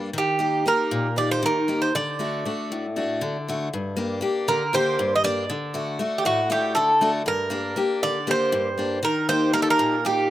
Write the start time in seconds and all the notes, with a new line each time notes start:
Already playing: G2
0.13 D#3
0.18 G4
0.39 A#3 D#4 G4
0.66 A#3 D#4 G4 A#4
0.91 A#2
1.16 A#3 D#4 G4 D5
1.31 C5
1.43 D#3 A#4
1.68 A#3 D#4 G4
1.82 C5
1.95 D3 D5
2.19 A3 D4 F#4
2.45 A3 D4 F#4
2.72 A2
2.96 A3 D4 F#4
3.21 D3
3.48 A3 D4 F#4
3.73 G2
3.97 A#3 D4 G4
4.21 A#3 D4 G4
4.48 D3 A#4
4.73 A#3 D4 G4 C5
4.99 G2
5.16 D#5
5.24 A#3 D4 G4 D5
5.50 D3
5.74 A3 D4 F#4
5.99 A3 D4 F#4
6.18 G4
6.25 A2 F#4
6.50 A3 D4 F#4 G4
6.75 D3 A4
7.01 A3 D4 F#4
7.26 G2 A#4
7.50 A#3 D4 G4
7.76 A#3 D4 G4
8.03 D3 D5
8.27 A#3 D4 G4 C5
8.52 G2
8.78 A#3 D4 G4
9.03 D#3 A#4
9.29 A#3 D#4 G4 C5
9.53 A#3 D#4 G4 A#4
9.62 A4
9.70 A#4
9.79 A#2
10.05 A#3 D#4 G4